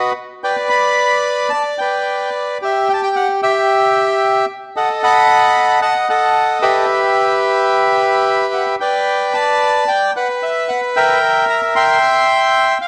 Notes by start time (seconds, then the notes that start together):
Already playing: F#4 B4 D#5
0.44 B4 D5 G5
0.69 D5 B5
1.50 D5 A5
1.78 B4 D5 G5
2.62 G4 E5
2.90 G5
2.94 A5
3.03 G5
3.16 F#5
3.42 G4 E5
4.76 A4 D#5 F#5
5.03 D#5 F#5 B5
5.82 D#5 F#5 A5
6.09 A4 D#5 F#5
6.62 G4 B4 E5
8.54 F#5
8.80 B4 D5 G5
9.34 D5 A5
9.88 G5
10.16 B4 F#5
10.43 E5
10.69 F#5
10.96 A#4 E5 G5
11.49 A#5
11.76 E5 G5 C6
12.81 F5